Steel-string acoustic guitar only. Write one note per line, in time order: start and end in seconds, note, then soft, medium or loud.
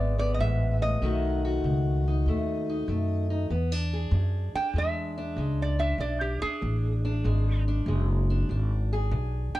0.00 0.35 E2 medium
0.00 0.99 G#3 medium
0.00 0.18 B3 medium
0.00 0.99 G#4 medium
0.18 1.03 B3 medium
0.40 0.81 G#2 medium
0.82 1.01 A2 medium
1.02 1.60 B2 medium
1.02 3.49 D#3 medium
1.02 2.27 A3 medium
1.02 2.06 D#4 medium
1.02 1.44 F#4 medium
1.45 3.49 F#4 medium
1.65 2.23 B2 medium
2.08 2.68 D#4 medium
2.28 2.85 B2 medium
2.28 2.88 A3 medium
2.70 3.29 D#4 medium
2.88 3.47 B2 medium
2.88 3.48 A3 medium
3.30 3.48 D#4 medium
3.50 4.09 E2 medium
3.50 3.72 B3 medium
3.72 4.54 D4 soft
3.93 6.03 G#4 medium
4.13 4.71 E2 medium
4.55 5.17 D4 medium
4.75 5.33 E2 medium
4.75 5.37 G#3 medium
5.18 5.79 D4 medium
5.37 5.95 E2 medium
5.37 6.03 G#3 medium
5.79 6.00 D4 medium
6.00 6.58 E2 medium
6.00 6.41 D4 medium
6.42 7.04 D4 medium
6.61 7.20 E2 medium
7.05 7.68 D4 medium
7.24 7.82 E2 medium
7.24 7.88 G#3 medium
7.68 8.30 D4 medium
7.87 8.45 E2 medium
7.87 8.54 G#3 medium
8.30 8.50 D4 medium
8.50 9.07 E2 medium
8.50 9.54 D4 medium
8.93 9.60 G#4 medium
9.12 9.60 E2 medium
9.55 9.60 D4 medium